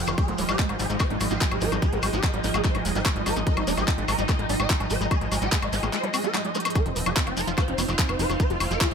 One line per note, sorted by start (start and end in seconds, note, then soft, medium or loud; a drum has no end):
0.00 6.76 F3 medium
0.00 0.75 C4 medium
0.00 1.48 F4 medium
0.00 1.50 C5 medium
0.00 1.50 F5 medium
0.00 6.76 G5 medium
0.07 0.15 F1 medium
0.07 0.11 D#3 medium
0.07 0.14 F4 medium
0.07 high woodblock medium
0.07 shekere medium
0.18 0.23 G3 loud
0.18 8.23 D#4 medium
0.18 0.24 G#4 loud
0.18 kick loud
0.18 closed hi-hat medium
0.18 high woodblock soft
0.18 shekere soft
0.28 0.35 G#1 medium
0.28 0.34 G#3 medium
0.28 0.35 G#3 medium
0.28 closed hi-hat soft
0.38 0.45 D#1 loud
0.38 0.45 G#3 medium
0.38 0.44 G#3 medium
0.38 7.38 D#5 medium
0.38 open hi-hat loud
0.38 shekere medium
0.49 0.56 G#1 loud
0.49 0.54 G3 loud
0.49 0.55 G4 loud
0.49 closed hi-hat soft
0.49 high woodblock medium
0.49 shekere soft
0.58 0.65 G#3 medium
0.58 kick loud
0.58 clap loud
0.58 closed hi-hat medium
0.58 shekere soft
0.69 0.76 G#1 medium
0.69 0.76 G#3 medium
0.69 0.75 G#3 medium
0.69 closed hi-hat soft
0.69 high woodblock soft
0.79 0.87 G#1 loud
0.79 0.85 G3 loud
0.79 0.86 G#4 medium
0.79 open hi-hat medium
0.79 shekere loud
0.90 0.97 G#1 medium
0.90 0.95 G#3 medium
0.90 0.96 G#3 medium
0.90 shekere medium
1.00 1.06 G#3 medium
1.00 1.07 C5 loud
1.00 kick loud
1.00 clap medium
1.00 closed hi-hat medium
1.00 high woodblock medium
1.00 shekere soft
1.10 1.17 G#1 medium
1.10 1.16 G3 loud
1.10 1.17 G#3 medium
1.10 closed hi-hat soft
1.20 1.28 G#1 loud
1.20 1.26 G#3 medium
1.20 1.27 G#3 medium
1.20 open hi-hat loud
1.20 high woodblock soft
1.20 shekere loud
1.30 1.38 G#1 medium
1.30 1.36 G#3 medium
1.30 1.37 C5 medium
1.30 closed hi-hat soft
1.30 shekere medium
1.41 1.47 G3 loud
1.41 1.48 G#3 medium
1.41 kick loud
1.41 clap loud
1.41 closed hi-hat medium
1.41 shekere soft
1.51 1.58 G#1 medium
1.51 1.58 G#3 medium
1.51 1.57 G#3 medium
1.51 closed hi-hat soft
1.51 high woodblock medium
1.61 1.69 G#1 loud
1.61 1.67 G#3 medium
1.61 1.68 A#4 medium
1.61 open hi-hat medium
1.61 shekere medium
1.72 1.79 G#1 medium
1.72 1.78 G3 loud
1.72 1.79 G#3 medium
1.72 closed hi-hat soft
1.72 high woodblock soft
1.72 shekere soft
1.82 1.88 G#3 medium
1.82 1.89 G#4 loud
1.82 kick loud
1.82 closed hi-hat medium
1.82 shekere soft
1.93 2.00 G#1 loud
1.93 1.98 G#3 medium
1.93 1.99 G#3 medium
1.93 closed hi-hat soft
2.02 2.10 G#1 medium
2.02 2.08 G3 loud
2.02 2.09 G#3 medium
2.02 open hi-hat loud
2.02 high woodblock medium
2.02 shekere medium
2.13 2.20 G#1 medium
2.13 2.19 G#3 medium
2.13 2.20 G4 medium
2.13 shekere medium
2.23 2.29 G#3 medium
2.23 2.30 G#3 medium
2.23 kick loud
2.23 clap loud
2.23 closed hi-hat medium
2.23 high woodblock soft
2.23 shekere soft
2.34 2.41 G#1 medium
2.34 2.39 G3 loud
2.34 2.40 G#3 medium
2.34 closed hi-hat soft
2.44 2.51 G#1 loud
2.44 2.49 G#3 medium
2.44 2.50 G#4 medium
2.44 open hi-hat medium
2.44 shekere medium
2.54 2.61 G#1 medium
2.54 2.61 G#3 medium
2.54 2.60 G#3 medium
2.54 closed hi-hat soft
2.54 high woodblock medium
2.54 shekere medium
2.64 2.70 G3 loud
2.64 2.71 C5 medium
2.64 kick loud
2.64 clap medium
2.64 closed hi-hat medium
2.64 shekere soft
2.75 2.82 G#1 medium
2.75 2.80 G#3 medium
2.75 2.81 G#3 medium
2.75 closed hi-hat soft
2.75 high woodblock soft
2.85 2.92 D#1 loud
2.85 2.92 G#3 medium
2.85 2.91 G#3 medium
2.85 open hi-hat loud
2.85 shekere medium
2.95 3.02 G#1 medium
2.95 3.01 G3 loud
2.95 3.02 C5 loud
2.95 closed hi-hat soft
2.95 shekere medium
3.06 3.11 G#3 medium
3.06 3.12 G#3 medium
3.06 kick loud
3.06 clap loud
3.06 closed hi-hat medium
3.06 high woodblock medium
3.06 shekere soft
3.16 3.23 G#1 medium
3.16 3.21 G#3 medium
3.16 3.22 G#3 medium
3.16 closed hi-hat soft
3.26 3.33 G#1 loud
3.26 3.32 G3 loud
3.26 3.33 A#4 medium
3.26 open hi-hat loud
3.26 high woodblock soft
3.26 shekere medium
3.36 3.43 G#1 medium
3.36 3.42 G#3 medium
3.36 3.43 G#3 medium
3.36 shekere medium
3.47 3.52 G#3 medium
3.47 3.53 A#4 loud
3.47 kick loud
3.47 closed hi-hat medium
3.47 shekere soft
3.57 3.64 G#1 medium
3.57 3.62 G3 loud
3.57 3.63 D#4 medium
3.57 closed hi-hat soft
3.57 high woodblock medium
3.67 3.74 D#1 medium
3.67 3.73 G#3 medium
3.67 3.74 D#4 medium
3.67 open hi-hat loud
3.67 shekere medium
3.77 3.84 G#1 loud
3.77 3.83 G#3 medium
3.77 3.84 G#4 medium
3.77 closed hi-hat soft
3.77 high woodblock soft
3.77 shekere medium
3.88 3.93 G3 loud
3.88 3.94 D#4 medium
3.88 kick loud
3.88 clap loud
3.88 closed hi-hat medium
3.88 shekere soft
3.98 4.05 G#1 medium
3.98 4.04 G#3 medium
3.98 4.05 D#4 medium
3.98 closed hi-hat soft
4.08 4.15 G#1 loud
4.08 4.14 G#3 medium
4.08 4.15 A#4 medium
4.08 open hi-hat medium
4.08 high woodblock medium
4.08 shekere medium
4.18 4.26 G#1 medium
4.18 4.24 G3 loud
4.18 4.25 D#4 medium
4.18 closed hi-hat soft
4.18 shekere medium
4.29 4.34 G#3 medium
4.29 4.35 D#5 loud
4.29 kick loud
4.29 clap medium
4.29 closed hi-hat medium
4.29 high woodblock soft
4.29 shekere soft
4.39 4.46 G#1 medium
4.39 4.45 G#3 medium
4.39 4.46 D#4 medium
4.39 closed hi-hat soft
4.49 4.56 G#1 loud
4.49 4.55 G3 loud
4.49 4.56 D#4 medium
4.49 open hi-hat loud
4.49 shekere medium
4.60 4.67 G#1 medium
4.60 4.65 G#3 medium
4.60 4.66 D#5 medium
4.60 high woodblock medium
4.60 shekere soft
4.70 4.76 G#3 medium
4.70 4.76 D#4 medium
4.70 kick loud
4.70 clap loud
4.70 closed hi-hat medium
4.80 4.87 G#1 medium
4.80 4.86 G3 loud
4.80 4.87 D#4 medium
4.80 closed hi-hat soft
4.80 high woodblock soft
4.90 4.97 G#1 loud
4.90 4.96 G#3 medium
4.90 4.97 C5 medium
4.90 open hi-hat medium
4.90 shekere medium
5.01 5.08 G#1 medium
5.01 5.06 G#3 medium
5.01 5.07 D#4 medium
5.01 closed hi-hat soft
5.01 shekere medium
5.11 5.17 G3 loud
5.11 5.18 G#4 loud
5.11 kick loud
5.11 closed hi-hat medium
5.11 high woodblock medium
5.11 shekere soft
5.21 5.28 G#1 medium
5.21 5.28 G#3 medium
5.21 5.27 G#3 medium
5.21 closed hi-hat soft
5.32 5.39 G#1 loud
5.32 5.37 G#3 medium
5.32 5.38 G#3 medium
5.32 open hi-hat loud
5.32 high woodblock soft
5.32 shekere medium
5.42 5.49 G#1 medium
5.42 5.47 G3 loud
5.42 5.48 G4 medium
5.42 closed hi-hat soft
5.42 shekere medium
5.52 5.59 G#3 medium
5.52 5.58 G#3 medium
5.52 kick loud
5.52 clap loud
5.52 closed hi-hat medium
5.52 shekere soft
5.62 5.69 G#1 medium
5.62 5.69 G#3 medium
5.62 5.68 G#3 medium
5.62 closed hi-hat soft
5.62 high woodblock medium
5.73 5.80 G#1 loud
5.73 5.78 G3 loud
5.73 5.79 G#4 medium
5.73 open hi-hat medium
5.73 shekere medium
5.83 5.90 G#1 medium
5.83 5.89 G#3 medium
5.83 closed hi-hat soft
5.83 high woodblock soft
5.83 shekere medium
5.93 5.99 G#3 medium
5.93 6.00 C5 medium
5.93 clap medium
5.93 closed hi-hat medium
5.93 shekere soft
6.04 6.09 G3 loud
6.04 6.10 G#3 medium
6.04 closed hi-hat soft
6.14 6.20 G#3 medium
6.14 6.19 C4 medium
6.14 open hi-hat loud
6.14 high woodblock medium
6.14 shekere medium
6.24 6.28 G3 loud
6.24 6.31 A#4 medium
6.24 closed hi-hat soft
6.24 shekere medium
6.34 6.38 G3 medium
6.34 6.41 G#3 medium
6.34 clap loud
6.34 closed hi-hat medium
6.34 high woodblock soft
6.34 shekere soft
6.45 6.51 G#3 medium
6.45 6.50 G#3 medium
6.45 closed hi-hat soft
6.55 6.60 G#3 medium
6.55 6.61 G4 medium
6.55 closed hi-hat medium
6.55 shekere medium
6.60 closed hi-hat medium
6.65 6.72 G#3 medium
6.65 closed hi-hat medium
6.65 high woodblock medium
6.65 shekere medium
6.70 closed hi-hat medium
6.75 6.81 F3 medium
6.75 8.94 C4 medium
6.75 8.94 D#4 medium
6.75 6.82 A#4 loud
6.75 kick loud
6.75 closed hi-hat medium
6.75 high woodblock soft
6.75 shekere soft
6.86 6.93 F1 medium
6.86 6.89 F3 medium
6.86 6.92 C4 medium
6.86 closed hi-hat soft
6.96 7.03 D#1 loud
6.96 7.02 F3 medium
6.96 7.03 C4 medium
6.96 open hi-hat loud
6.96 shekere medium
7.06 7.13 F1 loud
7.06 7.12 F3 medium
7.06 7.13 G#4 loud
7.06 closed hi-hat soft
7.06 high woodblock medium
7.06 shekere soft
7.12 8.94 F4 medium
7.16 7.20 F3 medium
7.16 7.23 C4 medium
7.16 kick loud
7.16 clap loud
7.16 closed hi-hat medium
7.16 shekere soft
7.27 7.34 F1 loud
7.27 7.32 F3 medium
7.27 7.33 C4 medium
7.27 closed hi-hat soft
7.27 high woodblock soft
7.37 7.44 F1 loud
7.37 7.43 F3 medium
7.37 7.44 A#4 medium
7.37 8.94 C5 medium
7.37 open hi-hat medium
7.37 shekere medium
7.42 8.94 F5 medium
7.47 7.54 F1 medium
7.47 7.51 F3 medium
7.47 7.54 C4 medium
7.47 7.54 F4 loud
7.47 closed hi-hat soft
7.47 shekere medium
7.58 7.63 F3 medium
7.58 7.64 F4 medium
7.58 7.64 C5 loud
7.58 kick loud
7.58 clap medium
7.58 closed hi-hat medium
7.58 high woodblock medium
7.58 shekere soft
7.68 7.75 F1 medium
7.68 7.73 F3 medium
7.68 7.74 C4 medium
7.68 closed hi-hat soft
7.78 7.85 F1 loud
7.78 7.82 F3 medium
7.78 7.85 C4 medium
7.78 open hi-hat loud
7.78 high woodblock soft
7.78 shekere loud
7.88 7.95 F1 medium
7.88 7.94 F3 medium
7.88 7.95 C5 medium
7.88 closed hi-hat soft
7.88 shekere medium
7.99 8.04 F3 medium
7.99 8.05 C4 medium
7.99 kick loud
7.99 clap loud
7.99 closed hi-hat medium
8.09 8.16 F1 medium
8.09 8.13 F3 medium
8.09 8.16 C4 medium
8.09 closed hi-hat soft
8.09 high woodblock medium
8.19 8.26 F1 loud
8.19 8.25 F3 medium
8.19 8.26 C5 medium
8.19 open hi-hat loud
8.19 shekere medium
8.30 8.37 F1 medium
8.30 8.35 F3 medium
8.30 8.36 C4 medium
8.30 closed hi-hat soft
8.30 high woodblock soft
8.30 shekere soft
8.40 8.44 F3 medium
8.40 8.46 C5 loud
8.40 kick loud
8.40 closed hi-hat medium
8.40 shekere soft
8.50 8.57 F1 loud
8.50 8.56 F3 medium
8.50 8.57 F4 medium
8.50 closed hi-hat soft
8.60 8.67 F1 loud
8.60 8.66 F3 medium
8.60 8.67 F4 medium
8.60 open hi-hat loud
8.60 high woodblock medium
8.60 shekere medium
8.71 8.78 F1 loud
8.71 8.74 F3 medium
8.71 8.77 A#4 loud
8.71 closed hi-hat soft
8.71 shekere medium
8.81 8.87 F3 medium
8.81 8.87 F4 medium
8.81 8.94 G#4 loud
8.81 kick loud
8.81 clap loud
8.81 closed hi-hat medium
8.81 high woodblock soft
8.81 shekere soft